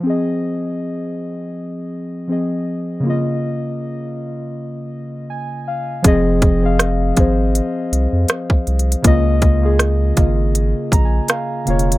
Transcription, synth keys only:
0.00 2.23 F3 medium
0.00 2.25 C4 medium
0.06 2.26 G#4 medium
0.06 2.28 D#5 medium
2.28 3.04 F3 soft
2.28 3.04 C4 soft
2.28 3.05 G#4 soft
2.32 3.06 D#5 medium
3.00 5.98 C#3 medium
3.00 6.00 A#3 medium
3.06 6.01 F4 medium
3.06 6.03 D#5 medium
5.30 5.65 G#5 medium
5.68 6.02 F5 medium
6.02 6.46 F3 loud
6.02 6.47 C4 medium
6.02 6.48 G#4 loud
6.07 6.49 D#5 loud
6.60 7.03 F3 medium
6.60 7.04 C4 medium
6.60 7.05 G#4 medium
6.65 7.06 F5 medium
7.15 8.29 F3 medium
7.15 8.30 C4 medium
7.15 8.31 G#4 medium
7.20 8.31 C5 medium
9.02 9.46 C#3 loud
9.02 9.47 A#3 loud
9.02 9.48 F4 medium
9.07 9.49 D#5 loud
9.60 10.03 C#3 medium
9.60 10.04 A#3 medium
9.60 10.05 F4 medium
9.65 10.06 G#4 medium
10.15 11.29 C#3 medium
10.15 11.30 A#3 medium
10.15 11.31 F4 medium
10.20 11.31 D#5 medium
10.93 11.04 A#5 medium
11.05 11.28 G#5 medium
11.30 11.65 F5 medium
11.65 11.95 C#3 medium
11.65 11.96 A#3 medium
11.65 11.97 F4 medium
11.65 11.98 F5 medium
11.70 11.97 C#5 medium

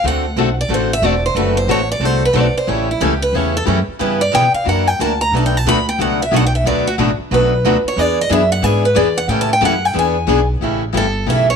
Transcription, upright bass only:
0.04 0.36 D2 medium
0.36 0.68 B1 medium
0.69 1.01 A1 medium
1.02 1.34 E1 medium
1.35 1.66 F#1 medium
1.67 1.99 A1 medium
2.00 2.33 C2 medium
2.33 2.53 B1 loud
2.67 3.00 A1 medium
3.00 3.32 C#2 medium
3.33 3.66 E2 medium
3.67 3.86 F#2 loud
3.88 muted upright bass stroke soft
4.00 4.32 G2 medium
4.34 4.53 B2 medium
4.53 muted upright bass stroke soft
4.66 4.99 F#2 medium
4.99 5.31 D2 medium
5.32 5.65 B1 medium
5.65 5.98 D2 medium
5.99 6.31 C#2 medium
6.32 6.64 B1 medium
6.64 6.97 D2 medium
6.98 7.17 A1 medium
7.19 muted upright bass stroke soft
7.31 7.63 B1 medium
7.64 7.83 D2 medium
7.84 muted upright bass stroke soft
7.96 8.29 E2 medium
8.30 8.62 F#2 loud
8.63 8.95 G#2 medium
8.96 9.27 E2 medium
9.28 9.61 A2 medium
9.61 9.94 F#2 medium
9.94 10.27 E2 medium
10.28 10.60 B1 loud
10.60 10.92 A1 medium
10.93 11.26 G1 medium
11.27 11.56 B1 medium

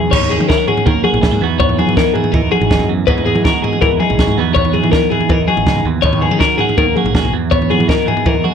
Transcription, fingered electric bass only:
0.12 0.37 D#2 loud
0.38 0.55 D#3 medium
0.87 0.94 D#3 loud
0.95 1.03 D#2 medium
1.13 1.30 A#1 medium
1.32 1.40 G#2 medium
1.41 1.82 E2 medium
1.86 2.03 E3 medium
2.34 2.41 E3 medium
2.41 2.50 E2 medium
2.61 2.78 G#1 medium
2.79 3.04 F#2 medium
3.08 3.33 E2 loud
3.34 3.51 E3 medium
3.82 3.90 E3 loud
3.92 3.99 E2 medium
4.10 4.26 B1 medium
4.27 4.36 G#2 medium
4.38 4.79 E2 medium
4.84 5.00 E3 medium
5.30 5.38 E3 loud
5.41 5.48 E2 medium
5.57 5.65 G#1 medium
5.67 5.83 C#2 medium
5.85 6.02 D#2 medium
6.04 6.28 D#2 loud
6.31 6.48 D#3 medium
6.78 6.86 D#3 loud
6.87 6.95 D#2 medium
7.04 7.21 A#1 medium
7.22 7.31 B1 medium
7.33 7.74 E2 medium
7.78 7.95 E3 medium
8.26 8.34 E3 loud
8.35 8.43 E2 medium

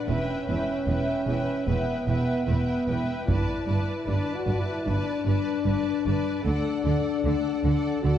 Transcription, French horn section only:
0.09 1.68 C#4 medium
1.67 2.47 B3 medium
2.48 3.10 B3 medium
3.27 4.05 E4 medium
4.07 4.34 D4 soft
4.34 4.61 F#4 medium
4.61 4.87 E4 medium
4.87 6.43 D4 medium
6.44 8.00 D4 medium
8.02 8.18 F#4 medium

